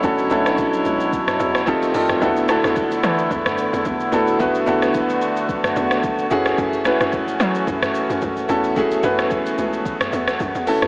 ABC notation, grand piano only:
X:1
M:4/4
L:1/8
Q:"Swing 16ths" 1/4=110
K:F#phr
V:1 name="Grand piano"
[CDEFA] [CDEFA]3 z2 [=C_E=FGA] [CEFGA] | [B,DEFA] [B,DEFA]3 z3 [B,DEFA] | [B,DEFB] [B,DEFA]3 z3 [A,CEF^G]- | [A,CEF^G] [A,CEFB]3 z3 [A,CEFA] |
[A,CEF^G] [A,CEFB]3 z3 [A,CEFA] |]